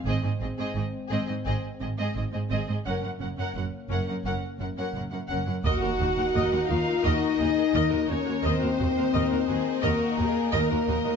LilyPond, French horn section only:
\new Staff \with { instrumentName = "French horn section" } { \time 4/4 \key ees \dorian \tempo 4 = 86 <aes c'>1 | <bes des'>2.~ <bes des'>8 r8 | ges'4. f'8 ees'4. des'8 | c'2 bes4 bes4 | }